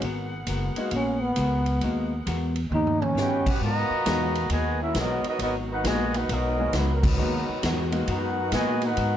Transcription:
Already playing: saxophone section F#5
0.02 upright bass G#1, hollow-body jazz guitar G#3 B3 F#4 A#4, saxophone section B3 G#4 A#4, kick, ride
0.47 upright bass F#1, hollow-body jazz guitar G#3 B3 F#4 A#4, kick, hi-hat pedal, ride
0.75 grand piano G#3 A#3 B3 D#4 F#4, muted upright bass stroke, ride
0.91 upright bass A#1, hollow-body jazz guitar G#3 B3 F#4, kick, ride
0.95 trombone C#4, hollow-body jazz guitar A#4
1.22 trombone B3
1.36 upright bass C#2, hollow-body jazz guitar G#3 B3 F#4 A#4, kick, hi-hat pedal, ride
1.66 ride
1.81 upright bass D#2, hollow-body jazz guitar G#3 B3 F#4 A#4, grand piano G#3 A#3 B3 D#4 F#4, kick, ride
2.26 upright bass E2, hollow-body jazz guitar G#3 B3 F#4 A#4, kick, hi-hat pedal, ride
2.56 ride
2.70 upright bass D#2, hollow-body jazz guitar D#3 B3, saxophone section C#4 G4 B4 D#5, floor tom
2.74 hollow-body jazz guitar C#4 G4, trombone D#4
2.87 floor tom
3.02 trombone C#4, floor tom
3.15 upright bass G2, hollow-body jazz guitar D#3 B3 C#4 G4, trombone section B3 C#4 G4, trumpet section C#4, snare, hi-hat pedal
3.19 trumpet section F#4 B4 G5
3.46 trombone section B3 C#4 F#4, trumpet section C#4 G4 B4 F#5, muted upright bass stroke, kick, crash
3.59 upright bass G#2, trombone section A#2 F#3, saxophone section D#3 F#3 G#3 F#4, hollow-body jazz guitar G#3 B3 F#4, kick
3.63 trombone section D#3, trumpet section F#4 B4 D#5 A#5, hollow-body jazz guitar A#4
3.90 muted upright bass stroke
4.05 upright bass E2, grand piano B2 F#3 G#3 D#4 F#4, hollow-body jazz guitar G#3 B3 F#4 A#4, kick, snare, hi-hat pedal, ride
4.35 ride
4.49 upright bass D#2, trombone section D#3 G#3, hollow-body jazz guitar G#3 B3 F#4 A#4, trumpet section F#4 D#5 G#5, kick, ride
4.53 trombone section B2, trumpet section B4
4.81 trumpet section C#4 F#4 A#4 E5, trombone section E4
4.95 upright bass B1, trombone section F#3 B3 D#4, hollow-body jazz guitar G#3 B3 F#4 A#4, kick, snare, hi-hat pedal, ride
4.99 trumpet section B3 F#4 A#4 D#5
5.24 trombone section F#3 B3 D#4, muted upright bass stroke, ride
5.28 trumpet section B3 F#4 A#4 D#5
5.39 upright bass G#1, trombone section F#3 B3 D#4, hollow-body jazz guitar G#3 B3 F#4 A#4, trumpet section B3 F#4 A#4 D#5, kick, ride
5.72 trombone section B3 D#4 F#4, trumpet section D#4 A#4 B4 F#5
5.84 upright bass A#1, trombone section B2 D#3 G#3, grand piano G#3 A#3 B3 D#4 F#4, hollow-body jazz guitar G#3 B3 F#4 A#4, trumpet section F#4 B4 D#5, kick, snare, hi-hat pedal, ride
5.88 trumpet section G#5
6.14 trombone section B3 D#4 F#4, trumpet section D#4 A#4 B4 F#5, ride
6.29 upright bass B1, trombone section F#3 B3 D#4, hollow-body jazz guitar G#3 B3 F#4 A#4, trumpet section B3 F#4 A#4 D#5, kick, ride
6.58 grand piano G#3 A#3 B3 D#4 G#4
6.73 upright bass C#2, trumpet section F#3 A#3 D#4 B4, hollow-body jazz guitar G#3 B3 F#4 A#4, kick, snare, hi-hat pedal, ride
6.78 trombone section D#3 F#3 B3
6.94 trumpet section A#4
7.03 trombone section D#3 F#3 B3, trumpet section F#3 D#4 A#4 B4, kick, crash
7.15 upright bass D#2, saxophone section F#3, hollow-body jazz guitar G#3 B3, grand piano G#3 A#3 B3 D#4 F#4
7.20 hollow-body jazz guitar F#4 A#4
7.49 muted upright bass stroke
7.62 upright bass E2, hollow-body jazz guitar G#3 B3 F#4 A#4, kick, snare, hi-hat pedal, ride
7.91 grand piano G#3 A#3 B3 D#4 F#4, ride
8.07 upright bass F#2, hollow-body jazz guitar G#3 B3 F#4 A#4, trombone section B3 D#4 F#4, trumpet section D#4 A#4 B4 F#5, kick, ride
8.51 upright bass A#2, hollow-body jazz guitar G#3 B3 F#4 A#4, grand piano G#3 A#3 B3 D#4 F#4, trumpet section F#4 B4 D#5 G#5, kick, snare, hi-hat pedal, ride
8.55 trombone section B2 D#3 G#3
8.82 trumpet section D#4 A#4 B4 F#5, trombone section F#4, ride
8.86 trombone section B3 D#4
8.96 upright bass G#2, hollow-body jazz guitar G#3 B3 F#4 A#4, kick, ride

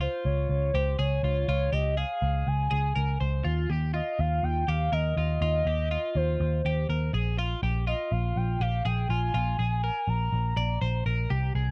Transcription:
0.01 clean electric guitar F4, soft synth lead C5
0.25 picked electric bass C#2, soft synth lead C#5
0.49 picked electric bass C#2, soft synth lead C#5
0.73 picked electric bass C#2, clean electric guitar G4, soft synth lead C5
0.98 picked electric bass C#2, clean electric guitar G#4, soft synth lead C#5
1.23 picked electric bass C#2, clean electric guitar F4
1.48 picked electric bass C#2, clean electric guitar F4, soft synth lead C#5
1.73 picked electric bass C#2, clean electric guitar G4, soft synth lead D#5
1.97 clean electric guitar G#4, soft synth lead F5
2.22 picked electric bass C#2
2.47 picked electric bass C#2, soft synth lead G#5
2.71 picked electric bass C#2, clean electric guitar G#4
2.96 picked electric bass C#2, clean electric guitar A#4
3.21 picked electric bass C#2, clean electric guitar C5
3.44 picked electric bass D#2, clean electric guitar F4
3.70 picked electric bass D#2, clean electric guitar G4
3.94 clean electric guitar F4, soft synth lead D#5
4.19 picked electric bass D#2, soft synth lead F5
4.43 picked electric bass D#2, soft synth lead G5
4.68 picked electric bass D#2, clean electric guitar G4, soft synth lead F5
4.92 picked electric bass D#2, clean electric guitar A#4, soft synth lead D#5
5.17 picked electric bass D#2, clean electric guitar F4, soft synth lead D#5
5.41 picked electric bass D#2, clean electric guitar F4
5.65 picked electric bass D#2, clean electric guitar G4
5.91 clean electric guitar F4
6.15 picked electric bass D#2, soft synth lead C5
6.40 picked electric bass D#2
6.65 picked electric bass D#2, clean electric guitar G4
6.89 picked electric bass D#2, clean electric guitar A#4
7.13 picked electric bass A#1, clean electric guitar G#4
7.39 clean electric guitar F4
7.63 picked electric bass A#1, clean electric guitar G4
7.87 clean electric guitar F4, soft synth lead D#5
8.11 picked electric bass A#1, soft synth lead F5
8.36 picked electric bass A#1, soft synth lead G5
8.60 picked electric bass A#1, clean electric guitar G4, soft synth lead F5
8.85 picked electric bass A#1, clean electric guitar G#4, soft synth lead G5
9.09 picked electric bass A#1, clean electric guitar F4, soft synth lead G#5
9.34 picked electric bass A#1, clean electric guitar F4
9.59 picked electric bass A#1, clean electric guitar G#4
9.84 clean electric guitar A#4
10.08 picked electric bass A#1, soft synth lead A#5
10.32 picked electric bass A#1
10.57 picked electric bass A#1, clean electric guitar D5
10.82 picked electric bass A#1, clean electric guitar C5
11.06 picked electric bass A#1, clean electric guitar A#4
11.30 picked electric bass C2, clean electric guitar G4
11.55 picked electric bass C2, clean electric guitar G#4

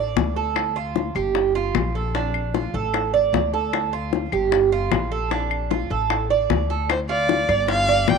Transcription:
Already playing: upright bass A1, cuban tres D5
0.16 upright bass D2, high bongo, low bongo
0.36 cuban tres A4, high bongo
0.56 high bongo, claves
0.76 cuban tres F4
0.96 high bongo
1.15 upright bass G1, cuban tres G4, claves
1.35 high bongo
1.55 cuban tres F4
1.75 upright bass A#1, high bongo, low bongo, claves
1.95 cuban tres A4
2.15 cuban tres D4, high bongo
2.34 claves
2.54 cuban tres F4, high bongo
2.74 upright bass A1, cuban tres A4, high bongo
2.94 high bongo, claves
3.14 cuban tres D5, high bongo
3.33 upright bass D2, high bongo, low bongo
3.54 cuban tres A4, high bongo
3.73 high bongo, claves
3.93 cuban tres F4
4.13 high bongo
4.32 upright bass G1, cuban tres G4, claves
4.52 high bongo
4.72 cuban tres F4
4.91 upright bass A#1, high bongo, low bongo, claves
5.12 cuban tres A4
5.31 cuban tres D4, high bongo
5.51 claves
5.71 cuban tres F4, high bongo
5.90 upright bass A1, cuban tres A4, high bongo
6.10 high bongo, claves
6.30 cuban tres D5, high bongo
6.50 upright bass D2, high bongo, low bongo
6.70 cuban tres A4, high bongo
6.89 violin C5, high bongo, claves
7.09 cuban tres F4, violin D5
7.29 high bongo
7.49 upright bass G1, cuban tres D5, high bongo, claves
7.68 cuban tres F4, violin F5, high bongo
7.88 cuban tres D5, high bongo
8.08 upright bass A#1, violin G5, high bongo, low bongo, claves

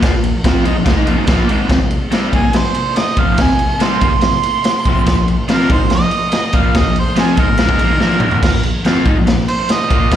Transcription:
0.03 overdriven electric guitar A#2 F3, kick, snare, ride
0.14 overdriven electric guitar A#2 F3
0.24 ride
0.44 overdriven electric guitar F3 C4 F4, kick, snare, ride
0.64 overdriven electric guitar G#3 D#4, ride
0.75 overdriven electric guitar A#2 F3
0.85 overdriven electric guitar C#3 G#3, kick, snare, ride
0.95 overdriven electric guitar G#3 D#4
1.06 overdriven electric guitar A#2 F3, ride
1.16 overdriven electric guitar G#2 D#3
1.27 overdriven electric guitar A#2 F3 A#3, kick, snare, ride
1.48 overdriven electric guitar G#2 D#3 G#3, ride
1.69 overdriven electric guitar F2 C3, kick, snare, ride
1.80 overdriven electric guitar F2 C3
1.91 ride
2.11 overdriven electric guitar C3 G3 C4, snare, ride
2.33 overdriven electric guitar D#3 A#3, harmonica G#4, kick, ride
2.44 overdriven electric guitar F2 C3
2.53 overdriven electric guitar F2 C3, harmonica C5, snare, ride
2.74 ride
2.96 harmonica D#5, snare, ride
3.17 overdriven electric guitar F2 C3 F3, harmonica F5, kick, ride
3.37 overdriven electric guitar F2 C3, harmonica G#5, kick, snare, ride
3.49 overdriven electric guitar F2 C3
3.59 ride
3.80 overdriven electric guitar C3 G3 C4, harmonica C6, snare, ride
4.01 overdriven electric guitar D#3 A#3, harmonica C6, kick, ride
4.12 overdriven electric guitar F2 C3
4.21 overdriven electric guitar F2 C3, snare, ride
4.43 ride
4.64 snare, ride
4.85 overdriven electric guitar F2 C3 F3, kick, ride
5.06 overdriven electric guitar A#2 F3, kick, snare, ride
5.18 overdriven electric guitar A#2 F3
5.28 ride
5.48 overdriven electric guitar F3 C4 F4, harmonica A#4, snare, ride
5.70 overdriven electric guitar G#3 D#4, harmonica C5, kick, ride
5.81 overdriven electric guitar A#2 F3
5.90 overdriven electric guitar A#2 F3, snare, ride
5.95 harmonica D#5
6.11 ride
6.32 snare, ride
6.53 overdriven electric guitar A#2 F3 A#3, harmonica F5, kick, ride
6.74 overdriven electric guitar A#2 F3, harmonica D#5, kick, snare, ride
6.86 overdriven electric guitar A#2 F3
6.96 harmonica C5, ride
7.16 overdriven electric guitar F3 C4 F4, harmonica G#4, snare, ride
7.37 overdriven electric guitar G#3 D#4, harmonica A#4, kick, ride
7.49 overdriven electric guitar A#2 F3
7.57 overdriven electric guitar C#3 G#3, snare, ride
7.69 overdriven electric guitar G#3 D#4, kick
7.79 overdriven electric guitar A#2 F3, ride
7.91 overdriven electric guitar G#2 D#3
8.01 overdriven electric guitar A#2 F3 A#3, snare
8.20 overdriven electric guitar G#2 D#3 G#3, mid tom
8.31 floor tom
8.43 overdriven electric guitar A#2 F3, kick, snare, ride, crash
8.53 overdriven electric guitar A#2 F3
8.63 ride
8.85 overdriven electric guitar F3 C4 F4, snare, ride
9.05 overdriven electric guitar G#3 D#4, kick, ride
9.17 overdriven electric guitar A#2 F3
9.27 overdriven electric guitar A#2 F3, snare, ride
9.48 harmonica C5, ride
9.69 harmonica D#5, snare, ride
9.90 overdriven electric guitar A#2 F3 A#3, kick, ride
10.11 overdriven electric guitar A#2 F3, kick, snare, ride

